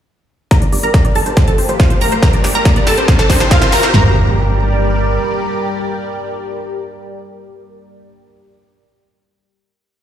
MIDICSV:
0, 0, Header, 1, 7, 480
1, 0, Start_track
1, 0, Tempo, 428571
1, 572, Time_signature, 4, 2, 24, 8
1, 11227, End_track
2, 0, Start_track
2, 0, Title_t, "Synth pluck"
2, 0, Program_c, 0, 84
2, 572, Note_on_c, 0, 70, 72
2, 572, Note_on_c, 0, 82, 93
2, 655, Note_off_c, 0, 82, 0
2, 656, Note_off_c, 0, 70, 0
2, 692, Note_on_c, 0, 74, 62
2, 775, Note_off_c, 0, 74, 0
2, 814, Note_on_c, 0, 74, 59
2, 897, Note_off_c, 0, 74, 0
2, 934, Note_on_c, 0, 70, 75
2, 935, Note_on_c, 0, 82, 93
2, 1017, Note_off_c, 0, 70, 0
2, 1017, Note_off_c, 0, 82, 0
2, 1055, Note_on_c, 0, 74, 65
2, 1137, Note_off_c, 0, 74, 0
2, 1175, Note_on_c, 0, 74, 59
2, 1257, Note_off_c, 0, 74, 0
2, 1295, Note_on_c, 0, 81, 87
2, 1296, Note_on_c, 0, 69, 74
2, 1377, Note_off_c, 0, 69, 0
2, 1377, Note_off_c, 0, 81, 0
2, 1414, Note_on_c, 0, 72, 62
2, 1496, Note_off_c, 0, 72, 0
2, 1536, Note_on_c, 0, 72, 64
2, 1618, Note_off_c, 0, 72, 0
2, 1655, Note_on_c, 0, 81, 94
2, 1656, Note_on_c, 0, 69, 76
2, 1737, Note_off_c, 0, 69, 0
2, 1737, Note_off_c, 0, 81, 0
2, 1774, Note_on_c, 0, 72, 61
2, 1856, Note_off_c, 0, 72, 0
2, 1896, Note_on_c, 0, 72, 63
2, 1977, Note_off_c, 0, 72, 0
2, 2015, Note_on_c, 0, 77, 87
2, 2016, Note_on_c, 0, 65, 74
2, 2097, Note_off_c, 0, 65, 0
2, 2097, Note_off_c, 0, 77, 0
2, 2136, Note_on_c, 0, 72, 64
2, 2218, Note_off_c, 0, 72, 0
2, 2255, Note_on_c, 0, 70, 79
2, 2255, Note_on_c, 0, 82, 93
2, 2337, Note_off_c, 0, 70, 0
2, 2337, Note_off_c, 0, 82, 0
2, 2376, Note_on_c, 0, 72, 64
2, 2458, Note_off_c, 0, 72, 0
2, 2498, Note_on_c, 0, 70, 75
2, 2498, Note_on_c, 0, 82, 93
2, 2578, Note_off_c, 0, 70, 0
2, 2578, Note_off_c, 0, 82, 0
2, 2616, Note_on_c, 0, 74, 64
2, 2698, Note_off_c, 0, 74, 0
2, 2735, Note_on_c, 0, 74, 63
2, 2817, Note_off_c, 0, 74, 0
2, 2856, Note_on_c, 0, 70, 77
2, 2857, Note_on_c, 0, 82, 94
2, 2938, Note_off_c, 0, 70, 0
2, 2938, Note_off_c, 0, 82, 0
2, 2975, Note_on_c, 0, 74, 67
2, 3057, Note_off_c, 0, 74, 0
2, 3096, Note_on_c, 0, 74, 65
2, 3177, Note_off_c, 0, 74, 0
2, 3215, Note_on_c, 0, 69, 77
2, 3215, Note_on_c, 0, 81, 94
2, 3297, Note_off_c, 0, 69, 0
2, 3297, Note_off_c, 0, 81, 0
2, 3335, Note_on_c, 0, 72, 62
2, 3417, Note_off_c, 0, 72, 0
2, 3455, Note_on_c, 0, 72, 64
2, 3537, Note_off_c, 0, 72, 0
2, 3574, Note_on_c, 0, 69, 84
2, 3574, Note_on_c, 0, 81, 100
2, 3657, Note_off_c, 0, 69, 0
2, 3657, Note_off_c, 0, 81, 0
2, 3694, Note_on_c, 0, 72, 65
2, 3777, Note_off_c, 0, 72, 0
2, 3816, Note_on_c, 0, 72, 63
2, 3898, Note_off_c, 0, 72, 0
2, 3936, Note_on_c, 0, 77, 86
2, 3937, Note_on_c, 0, 65, 75
2, 4018, Note_off_c, 0, 65, 0
2, 4018, Note_off_c, 0, 77, 0
2, 4055, Note_on_c, 0, 72, 65
2, 4137, Note_off_c, 0, 72, 0
2, 4176, Note_on_c, 0, 70, 80
2, 4176, Note_on_c, 0, 82, 91
2, 4258, Note_off_c, 0, 70, 0
2, 4258, Note_off_c, 0, 82, 0
2, 4295, Note_on_c, 0, 72, 67
2, 4377, Note_off_c, 0, 72, 0
2, 4416, Note_on_c, 0, 82, 91
2, 9343, Note_off_c, 0, 82, 0
2, 11227, End_track
3, 0, Start_track
3, 0, Title_t, "Analog synth pad"
3, 0, Program_c, 1, 89
3, 571, Note_on_c, 1, 55, 75
3, 572, Note_on_c, 1, 67, 68
3, 572, Note_on_c, 1, 70, 68
3, 572, Note_on_c, 1, 74, 81
3, 1522, Note_off_c, 1, 55, 0
3, 1522, Note_off_c, 1, 67, 0
3, 1523, Note_off_c, 1, 70, 0
3, 1523, Note_off_c, 1, 74, 0
3, 1534, Note_on_c, 1, 57, 77
3, 1534, Note_on_c, 1, 65, 73
3, 1535, Note_on_c, 1, 67, 86
3, 2480, Note_off_c, 1, 67, 0
3, 2484, Note_off_c, 1, 57, 0
3, 2484, Note_off_c, 1, 65, 0
3, 2493, Note_on_c, 1, 55, 80
3, 2493, Note_on_c, 1, 67, 73
3, 2494, Note_on_c, 1, 70, 72
3, 2494, Note_on_c, 1, 74, 87
3, 3443, Note_off_c, 1, 55, 0
3, 3444, Note_off_c, 1, 74, 0
3, 3451, Note_on_c, 1, 60, 81
3, 3452, Note_on_c, 1, 76, 85
3, 4394, Note_off_c, 1, 67, 0
3, 4394, Note_off_c, 1, 70, 0
3, 4402, Note_off_c, 1, 60, 0
3, 4403, Note_off_c, 1, 76, 0
3, 4412, Note_on_c, 1, 55, 85
3, 4412, Note_on_c, 1, 67, 74
3, 4412, Note_on_c, 1, 70, 73
3, 4412, Note_on_c, 1, 74, 91
3, 9103, Note_off_c, 1, 67, 0
3, 9103, Note_off_c, 1, 70, 0
3, 9104, Note_off_c, 1, 55, 0
3, 9104, Note_off_c, 1, 74, 0
3, 11227, End_track
4, 0, Start_track
4, 0, Title_t, "FM bass"
4, 0, Program_c, 2, 39
4, 692, Note_on_c, 2, 31, 86
4, 776, Note_off_c, 2, 31, 0
4, 813, Note_on_c, 2, 31, 94
4, 897, Note_off_c, 2, 31, 0
4, 932, Note_on_c, 2, 31, 88
4, 1016, Note_off_c, 2, 31, 0
4, 1172, Note_on_c, 2, 31, 81
4, 1256, Note_off_c, 2, 31, 0
4, 1292, Note_on_c, 2, 31, 92
4, 1376, Note_off_c, 2, 31, 0
4, 1412, Note_on_c, 2, 31, 91
4, 1496, Note_off_c, 2, 31, 0
4, 1652, Note_on_c, 2, 29, 85
4, 1736, Note_off_c, 2, 29, 0
4, 1773, Note_on_c, 2, 29, 98
4, 1857, Note_off_c, 2, 29, 0
4, 1893, Note_on_c, 2, 29, 93
4, 1977, Note_off_c, 2, 29, 0
4, 2133, Note_on_c, 2, 29, 85
4, 2217, Note_off_c, 2, 29, 0
4, 2254, Note_on_c, 2, 29, 97
4, 2337, Note_off_c, 2, 29, 0
4, 2374, Note_on_c, 2, 29, 87
4, 2457, Note_off_c, 2, 29, 0
4, 2615, Note_on_c, 2, 31, 89
4, 2698, Note_off_c, 2, 31, 0
4, 2734, Note_on_c, 2, 31, 101
4, 2817, Note_off_c, 2, 31, 0
4, 2853, Note_on_c, 2, 31, 91
4, 2937, Note_off_c, 2, 31, 0
4, 3093, Note_on_c, 2, 31, 86
4, 3177, Note_off_c, 2, 31, 0
4, 3214, Note_on_c, 2, 31, 95
4, 3297, Note_off_c, 2, 31, 0
4, 3335, Note_on_c, 2, 31, 92
4, 3418, Note_off_c, 2, 31, 0
4, 3573, Note_on_c, 2, 36, 87
4, 3657, Note_off_c, 2, 36, 0
4, 3693, Note_on_c, 2, 36, 102
4, 3777, Note_off_c, 2, 36, 0
4, 3814, Note_on_c, 2, 36, 95
4, 3897, Note_off_c, 2, 36, 0
4, 4053, Note_on_c, 2, 36, 90
4, 4137, Note_off_c, 2, 36, 0
4, 4174, Note_on_c, 2, 36, 100
4, 4258, Note_off_c, 2, 36, 0
4, 4293, Note_on_c, 2, 36, 90
4, 4377, Note_off_c, 2, 36, 0
4, 4414, Note_on_c, 2, 31, 98
4, 5808, Note_off_c, 2, 31, 0
4, 11227, End_track
5, 0, Start_track
5, 0, Title_t, "Impact"
5, 0, Program_c, 3, 103
5, 4412, Note_on_c, 3, 60, 70
5, 9383, Note_off_c, 3, 60, 0
5, 11227, End_track
6, 0, Start_track
6, 0, Title_t, "Riser"
6, 0, Program_c, 4, 103
6, 572, Note_on_c, 4, 60, 73
6, 4412, Note_off_c, 4, 60, 0
6, 11227, End_track
7, 0, Start_track
7, 0, Title_t, "Drums"
7, 571, Note_on_c, 9, 38, 48
7, 571, Note_on_c, 9, 42, 80
7, 572, Note_on_c, 9, 36, 115
7, 683, Note_off_c, 9, 38, 0
7, 683, Note_off_c, 9, 42, 0
7, 684, Note_off_c, 9, 36, 0
7, 692, Note_on_c, 9, 42, 51
7, 804, Note_off_c, 9, 42, 0
7, 812, Note_on_c, 9, 46, 101
7, 924, Note_off_c, 9, 46, 0
7, 932, Note_on_c, 9, 42, 50
7, 1044, Note_off_c, 9, 42, 0
7, 1052, Note_on_c, 9, 36, 115
7, 1053, Note_on_c, 9, 38, 50
7, 1053, Note_on_c, 9, 42, 80
7, 1164, Note_off_c, 9, 36, 0
7, 1165, Note_off_c, 9, 38, 0
7, 1165, Note_off_c, 9, 42, 0
7, 1173, Note_on_c, 9, 42, 51
7, 1285, Note_off_c, 9, 42, 0
7, 1292, Note_on_c, 9, 46, 89
7, 1404, Note_off_c, 9, 46, 0
7, 1412, Note_on_c, 9, 42, 51
7, 1524, Note_off_c, 9, 42, 0
7, 1532, Note_on_c, 9, 36, 118
7, 1532, Note_on_c, 9, 38, 55
7, 1532, Note_on_c, 9, 42, 78
7, 1644, Note_off_c, 9, 36, 0
7, 1644, Note_off_c, 9, 38, 0
7, 1644, Note_off_c, 9, 42, 0
7, 1653, Note_on_c, 9, 42, 52
7, 1765, Note_off_c, 9, 42, 0
7, 1772, Note_on_c, 9, 46, 96
7, 1884, Note_off_c, 9, 46, 0
7, 1892, Note_on_c, 9, 42, 53
7, 2004, Note_off_c, 9, 42, 0
7, 2012, Note_on_c, 9, 36, 118
7, 2012, Note_on_c, 9, 38, 64
7, 2012, Note_on_c, 9, 42, 77
7, 2124, Note_off_c, 9, 36, 0
7, 2124, Note_off_c, 9, 38, 0
7, 2124, Note_off_c, 9, 42, 0
7, 2132, Note_on_c, 9, 42, 54
7, 2244, Note_off_c, 9, 42, 0
7, 2252, Note_on_c, 9, 46, 91
7, 2364, Note_off_c, 9, 46, 0
7, 2374, Note_on_c, 9, 42, 52
7, 2486, Note_off_c, 9, 42, 0
7, 2492, Note_on_c, 9, 36, 121
7, 2493, Note_on_c, 9, 38, 72
7, 2493, Note_on_c, 9, 42, 80
7, 2604, Note_off_c, 9, 36, 0
7, 2605, Note_off_c, 9, 38, 0
7, 2605, Note_off_c, 9, 42, 0
7, 2612, Note_on_c, 9, 42, 50
7, 2724, Note_off_c, 9, 42, 0
7, 2733, Note_on_c, 9, 38, 76
7, 2733, Note_on_c, 9, 46, 111
7, 2845, Note_off_c, 9, 38, 0
7, 2845, Note_off_c, 9, 46, 0
7, 2853, Note_on_c, 9, 42, 50
7, 2965, Note_off_c, 9, 42, 0
7, 2972, Note_on_c, 9, 36, 122
7, 2972, Note_on_c, 9, 38, 82
7, 2972, Note_on_c, 9, 42, 79
7, 3084, Note_off_c, 9, 36, 0
7, 3084, Note_off_c, 9, 38, 0
7, 3084, Note_off_c, 9, 42, 0
7, 3092, Note_on_c, 9, 42, 53
7, 3204, Note_off_c, 9, 42, 0
7, 3211, Note_on_c, 9, 38, 88
7, 3211, Note_on_c, 9, 46, 97
7, 3323, Note_off_c, 9, 38, 0
7, 3323, Note_off_c, 9, 46, 0
7, 3331, Note_on_c, 9, 42, 54
7, 3443, Note_off_c, 9, 42, 0
7, 3452, Note_on_c, 9, 36, 125
7, 3452, Note_on_c, 9, 38, 92
7, 3452, Note_on_c, 9, 42, 80
7, 3564, Note_off_c, 9, 36, 0
7, 3564, Note_off_c, 9, 38, 0
7, 3564, Note_off_c, 9, 42, 0
7, 3572, Note_on_c, 9, 38, 80
7, 3572, Note_on_c, 9, 42, 53
7, 3684, Note_off_c, 9, 38, 0
7, 3684, Note_off_c, 9, 42, 0
7, 3692, Note_on_c, 9, 38, 94
7, 3692, Note_on_c, 9, 46, 107
7, 3693, Note_on_c, 9, 36, 62
7, 3804, Note_off_c, 9, 38, 0
7, 3804, Note_off_c, 9, 46, 0
7, 3805, Note_off_c, 9, 36, 0
7, 3812, Note_on_c, 9, 38, 86
7, 3812, Note_on_c, 9, 42, 53
7, 3924, Note_off_c, 9, 38, 0
7, 3924, Note_off_c, 9, 42, 0
7, 3932, Note_on_c, 9, 38, 100
7, 3932, Note_on_c, 9, 42, 80
7, 3933, Note_on_c, 9, 36, 124
7, 4044, Note_off_c, 9, 38, 0
7, 4044, Note_off_c, 9, 42, 0
7, 4045, Note_off_c, 9, 36, 0
7, 4051, Note_on_c, 9, 38, 95
7, 4051, Note_on_c, 9, 42, 55
7, 4163, Note_off_c, 9, 38, 0
7, 4163, Note_off_c, 9, 42, 0
7, 4171, Note_on_c, 9, 38, 108
7, 4171, Note_on_c, 9, 46, 96
7, 4283, Note_off_c, 9, 38, 0
7, 4283, Note_off_c, 9, 46, 0
7, 4292, Note_on_c, 9, 38, 96
7, 4292, Note_on_c, 9, 42, 53
7, 4404, Note_off_c, 9, 38, 0
7, 4404, Note_off_c, 9, 42, 0
7, 4412, Note_on_c, 9, 38, 107
7, 4412, Note_on_c, 9, 43, 107
7, 4524, Note_off_c, 9, 38, 0
7, 4524, Note_off_c, 9, 43, 0
7, 11227, End_track
0, 0, End_of_file